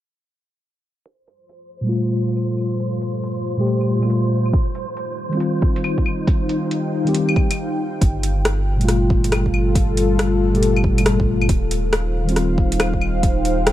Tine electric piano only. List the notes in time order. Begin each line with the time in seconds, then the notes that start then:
1.81 A#2 G3
1.86 A3 F4
3.57 A#2 G3 A3
3.61 G4
3.98 A#2 G3
4.04 A3 F4
5.29 D#3 G3
5.34 C4 F4
7.05 D#3 G3 C4
7.09 G4
8.77 A#2 G3
8.82 A3 F4
10.52 A#2 G3 A3
10.57 G4
10.94 A#2 G3
10.99 A3 F4
12.24 D#3 G3
12.30 C4 F4